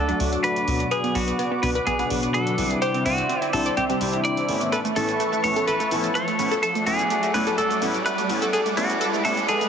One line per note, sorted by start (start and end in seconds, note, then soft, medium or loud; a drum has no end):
0.00 0.13 D2 loud
0.00 0.90 A3 medium
0.00 0.18 A4 medium
0.00 2.78 D5 medium
0.00 0.89 F#5 medium
0.00 4.68 D6 medium
0.00 riser medium
0.09 0.18 F#3 medium
0.09 0.18 A3 medium
0.09 0.16 D4 medium
0.09 0.18 D4 medium
0.09 0.18 A4 medium
0.09 closed hi-hat soft
0.20 0.37 D2 medium
0.20 0.65 F#3 medium
0.20 0.65 A3 medium
0.20 0.65 D4 medium
0.20 0.65 F#4 loud
0.20 open hi-hat loud
0.33 closed hi-hat medium
0.44 0.91 B4 loud
0.44 closed hi-hat medium
0.56 closed hi-hat soft
0.68 0.84 D2 medium
0.68 1.12 B2 medium
0.68 1.12 F#3 medium
0.68 1.12 B3 medium
0.68 1.12 D4 medium
0.68 1.12 F#4 medium
0.68 open hi-hat medium
0.80 closed hi-hat medium
0.91 1.16 G#4 loud
0.91 0.99 B4 loud
0.91 2.80 B4 medium
0.91 2.80 F#5 medium
0.91 closed hi-hat medium
1.04 1.11 B3 medium
1.04 closed hi-hat soft
1.15 1.32 B1 medium
1.15 1.30 B2 medium
1.15 1.30 F#3 medium
1.15 1.30 B3 medium
1.15 1.23 B3 medium
1.15 1.30 D4 medium
1.15 1.30 F#4 medium
1.15 1.64 F#4 medium
1.15 open hi-hat loud
1.28 closed hi-hat medium
1.39 1.47 B3 medium
1.39 closed hi-hat medium
1.52 1.58 B3 medium
1.63 1.80 C#2 medium
1.63 1.77 B2 medium
1.63 1.77 F#3 medium
1.63 1.71 B3 medium
1.63 1.77 B3 medium
1.63 1.77 D4 medium
1.63 1.77 F#4 medium
1.63 1.69 B4 loud
1.63 open hi-hat loud
1.75 1.82 B4 medium
1.75 closed hi-hat soft
1.87 2.03 B1 loud
1.87 1.94 B3 medium
1.87 2.09 G#4 medium
1.87 closed hi-hat medium
1.99 2.09 B2 medium
1.99 2.09 F#3 medium
1.99 2.06 B3 medium
1.99 2.09 B3 medium
1.99 2.09 D4 medium
1.99 2.09 G#4 medium
1.99 closed hi-hat soft
2.10 2.27 B1 medium
2.10 2.55 B2 medium
2.10 2.55 F#3 medium
2.10 2.55 B3 medium
2.10 2.55 D4 medium
2.10 2.55 F#4 loud
2.10 open hi-hat loud
2.23 closed hi-hat medium
2.34 2.71 A4 loud
2.34 closed hi-hat medium
2.47 closed hi-hat soft
2.58 2.75 B1 medium
2.58 3.03 C3 medium
2.58 3.03 G3 medium
2.58 3.03 C4 medium
2.58 3.03 D4 medium
2.58 3.03 E4 loud
2.58 open hi-hat medium
2.71 2.81 G#4 loud
2.71 closed hi-hat medium
2.82 3.05 G4 medium
2.82 2.90 C5 loud
2.82 4.70 C5 medium
2.82 4.70 D5 medium
2.82 6.59 E5 medium
2.82 closed hi-hat medium
2.94 3.01 C4 medium
2.94 closed hi-hat soft
3.06 3.22 C2 medium
3.06 3.20 C3 medium
3.06 3.20 G3 medium
3.06 3.13 C4 medium
3.06 3.20 C4 medium
3.06 3.20 D4 medium
3.06 3.20 E4 medium
3.06 3.50 F#4 medium
3.06 open hi-hat loud
3.18 closed hi-hat medium
3.29 3.37 C4 medium
3.29 closed hi-hat medium
3.42 3.49 C4 medium
3.42 closed hi-hat soft
3.53 3.70 C2 medium
3.53 3.68 C3 medium
3.53 3.68 G3 medium
3.53 3.61 C4 medium
3.53 3.68 C4 medium
3.53 3.68 D4 medium
3.53 3.68 E4 medium
3.53 3.77 A4 loud
3.53 open hi-hat medium
3.66 3.73 D5 medium
3.66 closed hi-hat soft
3.77 3.94 C2 medium
3.77 3.85 C4 medium
3.77 3.84 G4 medium
3.77 closed hi-hat medium
3.90 3.99 C3 medium
3.90 3.99 G3 medium
3.90 3.99 C4 medium
3.90 3.97 C4 medium
3.90 3.99 D4 medium
3.90 3.99 G4 medium
3.90 closed hi-hat soft
4.01 4.18 C2 medium
4.01 4.46 C3 medium
4.01 4.46 G3 medium
4.01 4.46 C4 medium
4.01 4.46 D4 medium
4.01 4.46 E4 loud
4.01 open hi-hat loud
4.13 closed hi-hat medium
4.25 4.72 D5 loud
4.25 closed hi-hat medium
4.37 closed hi-hat soft
4.49 4.65 G1 medium
4.49 4.72 A2 medium
4.49 4.72 A3 medium
4.49 4.72 B3 medium
4.49 4.72 C#4 medium
4.49 4.72 E4 medium
4.49 open hi-hat medium
4.61 closed hi-hat soft
4.72 4.80 A4 medium
4.72 6.61 B4 medium
4.72 4.79 B4 loud
4.72 6.61 A5 medium
4.72 6.61 C#6 medium
4.72 closed hi-hat medium
4.72 shaker soft
4.85 4.92 A3 medium
4.85 closed hi-hat soft
4.85 shaker soft
4.96 5.13 A1 medium
4.96 5.11 A2 medium
4.96 5.04 A3 medium
4.96 5.11 A3 medium
4.96 5.11 B3 medium
4.96 5.11 C#4 medium
4.96 5.11 E4 medium
4.96 5.40 A4 medium
4.96 open hi-hat loud
4.96 shaker medium
5.09 closed hi-hat medium
5.09 shaker soft
5.20 5.28 A3 medium
5.20 closed hi-hat medium
5.20 shaker soft
5.32 5.39 A3 medium
5.32 shaker soft
5.44 5.60 B1 medium
5.44 5.58 A2 medium
5.44 5.51 A3 medium
5.44 5.58 A3 medium
5.44 5.58 B3 medium
5.44 5.58 C#4 medium
5.44 5.58 E4 medium
5.44 5.67 C#5 medium
5.44 open hi-hat medium
5.44 shaker medium
5.56 5.63 A4 medium
5.56 closed hi-hat medium
5.56 shaker soft
5.67 5.84 A1 loud
5.67 5.75 A4 loud
5.67 5.90 B4 medium
5.67 closed hi-hat medium
5.67 shaker soft
5.80 5.87 A3 medium
5.80 closed hi-hat soft
5.80 shaker soft
5.91 6.08 A1 medium
5.91 6.06 A2 medium
5.91 5.99 A3 medium
5.91 6.06 A3 medium
5.91 6.06 B3 medium
5.91 6.06 C#4 medium
5.91 6.06 E4 medium
5.91 open hi-hat loud
5.91 shaker medium
6.04 closed hi-hat medium
6.04 shaker soft
6.15 6.23 A3 medium
6.15 6.62 C#5 loud
6.15 closed hi-hat medium
6.15 shaker soft
6.28 6.35 A3 medium
6.28 closed hi-hat soft
6.39 6.56 A1 medium
6.39 6.54 A2 medium
6.39 6.54 A3 medium
6.39 6.47 A3 medium
6.39 6.54 B3 medium
6.39 6.54 C#4 medium
6.39 6.54 E4 medium
6.39 open hi-hat medium
6.39 shaker medium
6.52 6.58 A4 medium
6.52 closed hi-hat medium
6.52 shaker soft
6.63 8.51 A3 medium
6.63 6.86 A4 medium
6.63 6.71 A4 loud
6.63 9.69 D5 medium
6.63 9.69 F#5 medium
6.63 9.69 D6 medium
6.63 closed hi-hat medium
6.63 shaker soft
6.75 6.82 A3 medium
6.75 closed hi-hat soft
6.75 shaker soft
6.86 7.03 D2 medium
6.86 7.01 A2 medium
6.86 6.94 A3 medium
6.86 7.01 A3 medium
6.86 7.01 B3 medium
6.86 7.01 C#4 medium
6.86 7.01 E4 medium
6.86 7.34 G#4 medium
6.86 open hi-hat loud
6.86 shaker medium
6.99 closed hi-hat medium
6.99 shaker soft
7.10 7.18 A3 medium
7.10 closed hi-hat medium
7.10 shaker soft
7.23 7.30 A3 medium
7.23 closed hi-hat soft
7.23 shaker soft
7.34 7.51 D2 medium
7.34 7.49 A2 medium
7.34 7.49 A3 medium
7.34 7.42 A3 medium
7.34 7.49 B3 medium
7.34 7.49 C#4 medium
7.34 7.49 E4 medium
7.34 7.58 B4 medium
7.34 open hi-hat medium
7.34 shaker medium
7.47 7.54 A4 medium
7.47 closed hi-hat medium
7.47 shaker soft
7.58 7.75 D2 loud
7.58 7.80 A4 medium
7.58 7.66 A4 loud
7.58 closed hi-hat medium
7.58 shaker soft
7.71 7.78 A3 medium
7.71 closed hi-hat soft
7.71 shaker soft
7.82 7.99 D2 medium
7.82 7.96 A2 medium
7.82 7.90 A3 medium
7.82 7.96 A3 medium
7.82 7.96 B3 medium
7.82 7.96 C#4 medium
7.82 7.96 E4 medium
7.82 open hi-hat loud
7.82 shaker medium
7.94 closed hi-hat medium
7.94 shaker soft
8.06 8.13 A3 medium
8.06 8.53 B4 loud
8.06 closed hi-hat medium
8.06 shaker soft
8.18 8.25 A3 medium
8.18 closed hi-hat soft
8.18 shaker soft
8.29 8.46 D2 medium
8.29 8.44 A2 medium
8.29 8.44 A3 medium
8.29 8.37 A3 medium
8.29 8.44 B3 medium
8.29 8.44 C#4 medium
8.29 8.44 E4 medium
8.29 open hi-hat medium
8.29 shaker medium
8.42 8.49 A4 medium
8.42 closed hi-hat medium
8.42 shaker soft
8.53 8.60 G#4 medium
8.53 8.61 A4 loud
8.53 9.69 B4 medium
8.53 closed hi-hat medium
8.53 shaker soft
8.66 8.73 A3 medium
8.66 closed hi-hat soft
8.66 shaker soft
8.77 8.94 B1 loud
8.77 8.92 A2 medium
8.77 8.85 A3 medium
8.77 8.92 A3 medium
8.77 8.92 B3 medium
8.77 8.92 C#4 medium
8.77 8.92 E4 medium
8.77 9.21 F#4 medium
8.77 open hi-hat loud
8.77 shaker medium
8.90 closed hi-hat medium
8.90 shaker soft
9.01 9.09 A4 loud
9.01 closed hi-hat medium
9.01 shaker soft
9.13 9.20 A3 medium
9.13 shaker soft
9.25 9.41 C#2 medium
9.25 9.39 A2 medium
9.25 9.32 A3 medium
9.25 9.39 A3 medium
9.25 9.39 B3 medium
9.25 9.39 C#4 medium
9.25 9.39 E4 medium
9.25 9.48 A4 medium
9.25 open hi-hat medium
9.25 shaker medium
9.37 closed hi-hat medium
9.37 shaker soft
9.48 9.65 B1 loud
9.48 9.69 G#4 medium
9.48 9.56 A4 loud
9.48 closed hi-hat medium
9.48 shaker soft
9.61 9.68 A3 medium
9.61 closed hi-hat soft
9.61 shaker soft